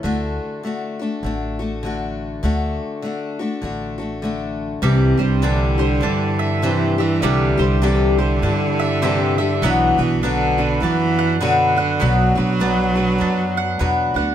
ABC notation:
X:1
M:4/4
L:1/8
Q:"Swing" 1/4=100
K:Clyd
V:1 name="Mandolin"
z8 | z8 | G, c D c D e c e | G, c D c D e c e |
B, B D B D f B f | B, B D B D f B f |]
V:2 name="Steel-string acoustic guitar"
[D,A,DF]2 [D,A,DF] [A,DF] [D,A,DF] [A,DF] [D,A,DF]2 | [D,A,DF]2 [D,A,DF] [A,DF] [D,A,DF] [A,DF] [D,A,DF]2 | [C,E,G,DG] [G,DG] [C,E,G,DG] [G,DG] [E,G,DG]2 [C,E,G,DG] [G,DG] | [C,E,G,DG] [G,DG] [C,E,G,DG] [G,DG] [E,G,DG]2 [C,E,G,DG] [G,DG] |
[B,,F,B,DF] [B,DF] [B,,F,B,DF] [B,DF] [F,B,DF]2 [B,,F,B,DF] [B,DF] | [B,,F,B,DF] [B,DF] [B,,F,B,DF] [B,DF] [F,B,DF]2 [B,,F,B,DF] [B,DF] |]
V:3 name="Cello" clef=bass
z8 | z8 | C,2 D,4 E, E, | D,2 D,6 |
E,2 D,2 E,2 D,2 | F,6- F, z |]
V:4 name="Upright bass" clef=bass
D,, z3 A,,,4 | D,, z3 A,,,4 | C,, C,,3 G,,4 | C,, C,,3 G,,4 |
B,,, B,,,3 F,,4 | B,,, B,,,3 F,,2 E,, D,, |]